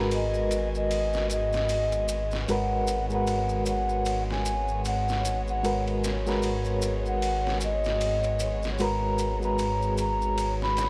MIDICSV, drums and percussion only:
0, 0, Header, 1, 2, 480
1, 0, Start_track
1, 0, Key_signature, 5, "minor"
1, 0, Tempo, 789474
1, 1515, Time_signature, 4, 2, 24, 8
1, 6624, End_track
2, 0, Start_track
2, 0, Title_t, "Drums"
2, 67, Note_on_c, 9, 82, 46
2, 70, Note_on_c, 9, 51, 75
2, 127, Note_off_c, 9, 82, 0
2, 130, Note_off_c, 9, 51, 0
2, 206, Note_on_c, 9, 82, 33
2, 267, Note_off_c, 9, 82, 0
2, 309, Note_on_c, 9, 51, 60
2, 314, Note_on_c, 9, 82, 87
2, 370, Note_off_c, 9, 51, 0
2, 375, Note_off_c, 9, 82, 0
2, 456, Note_on_c, 9, 82, 29
2, 516, Note_off_c, 9, 82, 0
2, 552, Note_on_c, 9, 51, 77
2, 554, Note_on_c, 9, 82, 44
2, 613, Note_off_c, 9, 51, 0
2, 615, Note_off_c, 9, 82, 0
2, 688, Note_on_c, 9, 82, 32
2, 699, Note_on_c, 9, 38, 37
2, 749, Note_off_c, 9, 82, 0
2, 759, Note_off_c, 9, 38, 0
2, 788, Note_on_c, 9, 51, 54
2, 794, Note_on_c, 9, 82, 81
2, 849, Note_off_c, 9, 51, 0
2, 854, Note_off_c, 9, 82, 0
2, 929, Note_on_c, 9, 82, 35
2, 937, Note_on_c, 9, 38, 40
2, 990, Note_off_c, 9, 82, 0
2, 998, Note_off_c, 9, 38, 0
2, 1027, Note_on_c, 9, 82, 47
2, 1029, Note_on_c, 9, 51, 80
2, 1088, Note_off_c, 9, 82, 0
2, 1090, Note_off_c, 9, 51, 0
2, 1169, Note_on_c, 9, 51, 38
2, 1169, Note_on_c, 9, 82, 35
2, 1230, Note_off_c, 9, 51, 0
2, 1230, Note_off_c, 9, 82, 0
2, 1267, Note_on_c, 9, 82, 79
2, 1269, Note_on_c, 9, 51, 56
2, 1328, Note_off_c, 9, 82, 0
2, 1330, Note_off_c, 9, 51, 0
2, 1406, Note_on_c, 9, 82, 32
2, 1418, Note_on_c, 9, 38, 42
2, 1467, Note_off_c, 9, 82, 0
2, 1478, Note_off_c, 9, 38, 0
2, 1509, Note_on_c, 9, 82, 40
2, 1512, Note_on_c, 9, 51, 74
2, 1570, Note_off_c, 9, 82, 0
2, 1573, Note_off_c, 9, 51, 0
2, 1747, Note_on_c, 9, 82, 69
2, 1752, Note_on_c, 9, 51, 61
2, 1808, Note_off_c, 9, 82, 0
2, 1813, Note_off_c, 9, 51, 0
2, 1885, Note_on_c, 9, 82, 36
2, 1946, Note_off_c, 9, 82, 0
2, 1987, Note_on_c, 9, 82, 44
2, 1990, Note_on_c, 9, 51, 74
2, 2048, Note_off_c, 9, 82, 0
2, 2051, Note_off_c, 9, 51, 0
2, 2122, Note_on_c, 9, 82, 30
2, 2183, Note_off_c, 9, 82, 0
2, 2224, Note_on_c, 9, 82, 88
2, 2229, Note_on_c, 9, 51, 58
2, 2284, Note_off_c, 9, 82, 0
2, 2290, Note_off_c, 9, 51, 0
2, 2366, Note_on_c, 9, 82, 30
2, 2427, Note_off_c, 9, 82, 0
2, 2464, Note_on_c, 9, 82, 45
2, 2469, Note_on_c, 9, 51, 76
2, 2524, Note_off_c, 9, 82, 0
2, 2530, Note_off_c, 9, 51, 0
2, 2618, Note_on_c, 9, 38, 33
2, 2679, Note_off_c, 9, 38, 0
2, 2708, Note_on_c, 9, 82, 74
2, 2711, Note_on_c, 9, 51, 58
2, 2769, Note_off_c, 9, 82, 0
2, 2771, Note_off_c, 9, 51, 0
2, 2847, Note_on_c, 9, 82, 33
2, 2908, Note_off_c, 9, 82, 0
2, 2948, Note_on_c, 9, 82, 47
2, 2952, Note_on_c, 9, 51, 75
2, 3009, Note_off_c, 9, 82, 0
2, 3013, Note_off_c, 9, 51, 0
2, 3092, Note_on_c, 9, 82, 34
2, 3101, Note_on_c, 9, 38, 40
2, 3153, Note_off_c, 9, 82, 0
2, 3162, Note_off_c, 9, 38, 0
2, 3191, Note_on_c, 9, 51, 58
2, 3192, Note_on_c, 9, 82, 80
2, 3252, Note_off_c, 9, 51, 0
2, 3253, Note_off_c, 9, 82, 0
2, 3329, Note_on_c, 9, 82, 33
2, 3390, Note_off_c, 9, 82, 0
2, 3431, Note_on_c, 9, 82, 41
2, 3432, Note_on_c, 9, 51, 74
2, 3492, Note_off_c, 9, 82, 0
2, 3493, Note_off_c, 9, 51, 0
2, 3572, Note_on_c, 9, 51, 39
2, 3633, Note_off_c, 9, 51, 0
2, 3672, Note_on_c, 9, 82, 75
2, 3674, Note_on_c, 9, 51, 56
2, 3682, Note_on_c, 9, 38, 43
2, 3733, Note_off_c, 9, 82, 0
2, 3734, Note_off_c, 9, 51, 0
2, 3743, Note_off_c, 9, 38, 0
2, 3810, Note_on_c, 9, 82, 31
2, 3823, Note_on_c, 9, 38, 40
2, 3870, Note_off_c, 9, 82, 0
2, 3884, Note_off_c, 9, 38, 0
2, 3905, Note_on_c, 9, 82, 41
2, 3913, Note_on_c, 9, 51, 73
2, 3966, Note_off_c, 9, 82, 0
2, 3974, Note_off_c, 9, 51, 0
2, 4041, Note_on_c, 9, 82, 31
2, 4102, Note_off_c, 9, 82, 0
2, 4145, Note_on_c, 9, 82, 79
2, 4152, Note_on_c, 9, 51, 59
2, 4206, Note_off_c, 9, 82, 0
2, 4213, Note_off_c, 9, 51, 0
2, 4291, Note_on_c, 9, 82, 30
2, 4352, Note_off_c, 9, 82, 0
2, 4392, Note_on_c, 9, 51, 79
2, 4394, Note_on_c, 9, 82, 42
2, 4452, Note_off_c, 9, 51, 0
2, 4455, Note_off_c, 9, 82, 0
2, 4542, Note_on_c, 9, 38, 39
2, 4602, Note_off_c, 9, 38, 0
2, 4624, Note_on_c, 9, 82, 68
2, 4632, Note_on_c, 9, 51, 53
2, 4685, Note_off_c, 9, 82, 0
2, 4693, Note_off_c, 9, 51, 0
2, 4767, Note_on_c, 9, 82, 30
2, 4780, Note_on_c, 9, 38, 45
2, 4828, Note_off_c, 9, 82, 0
2, 4841, Note_off_c, 9, 38, 0
2, 4868, Note_on_c, 9, 82, 44
2, 4869, Note_on_c, 9, 51, 80
2, 4929, Note_off_c, 9, 82, 0
2, 4930, Note_off_c, 9, 51, 0
2, 5005, Note_on_c, 9, 82, 30
2, 5011, Note_on_c, 9, 51, 38
2, 5066, Note_off_c, 9, 82, 0
2, 5072, Note_off_c, 9, 51, 0
2, 5104, Note_on_c, 9, 82, 80
2, 5110, Note_on_c, 9, 51, 58
2, 5165, Note_off_c, 9, 82, 0
2, 5171, Note_off_c, 9, 51, 0
2, 5244, Note_on_c, 9, 82, 35
2, 5260, Note_on_c, 9, 38, 43
2, 5305, Note_off_c, 9, 82, 0
2, 5320, Note_off_c, 9, 38, 0
2, 5341, Note_on_c, 9, 82, 41
2, 5352, Note_on_c, 9, 51, 78
2, 5402, Note_off_c, 9, 82, 0
2, 5413, Note_off_c, 9, 51, 0
2, 5584, Note_on_c, 9, 82, 66
2, 5591, Note_on_c, 9, 51, 56
2, 5644, Note_off_c, 9, 82, 0
2, 5652, Note_off_c, 9, 51, 0
2, 5729, Note_on_c, 9, 82, 30
2, 5790, Note_off_c, 9, 82, 0
2, 5828, Note_on_c, 9, 82, 39
2, 5831, Note_on_c, 9, 51, 73
2, 5889, Note_off_c, 9, 82, 0
2, 5892, Note_off_c, 9, 51, 0
2, 5972, Note_on_c, 9, 82, 29
2, 6033, Note_off_c, 9, 82, 0
2, 6065, Note_on_c, 9, 82, 82
2, 6071, Note_on_c, 9, 51, 57
2, 6126, Note_off_c, 9, 82, 0
2, 6132, Note_off_c, 9, 51, 0
2, 6212, Note_on_c, 9, 82, 32
2, 6273, Note_off_c, 9, 82, 0
2, 6309, Note_on_c, 9, 51, 82
2, 6316, Note_on_c, 9, 82, 43
2, 6370, Note_off_c, 9, 51, 0
2, 6377, Note_off_c, 9, 82, 0
2, 6459, Note_on_c, 9, 38, 35
2, 6520, Note_off_c, 9, 38, 0
2, 6547, Note_on_c, 9, 51, 61
2, 6553, Note_on_c, 9, 82, 65
2, 6556, Note_on_c, 9, 38, 87
2, 6608, Note_off_c, 9, 51, 0
2, 6614, Note_off_c, 9, 82, 0
2, 6616, Note_off_c, 9, 38, 0
2, 6624, End_track
0, 0, End_of_file